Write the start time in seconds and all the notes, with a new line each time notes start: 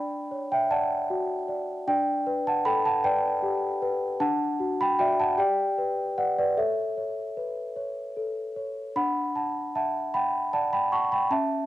Already playing: D4 D5 G5 B5
0.31 C#5
0.52 E5 G5
0.71 D5 F#5 A5
1.10 F#4
1.48 D5
1.87 D4 D5 G5
2.27 B4
2.47 F#5 A5
2.65 A4 G5 B5
2.86 F#5 A5
3.04 B4 D5 G5
3.42 G4
3.82 B4
4.20 D4 F#5 A5
4.60 F#4
4.81 G5 B5
4.99 F#4 D5 E5 G5
5.20 F#5 A5
5.38 G4 D5 G5
5.78 B4
6.18 B4 D5 F#5
6.39 B4 D5
6.57 A4 C#5 E5
6.97 C#5
7.37 B4
7.76 C#5
8.17 A4
8.56 C#5
8.96 D4 F#5 B5
9.36 F#5 A5
9.75 E5 F#5 A5
10.14 F#5 G5 B5
10.53 D5 F#5 A5
10.73 G5 B5
10.92 F#5 A5 C#6
11.12 G5 B5
11.31 C#4 E5 A5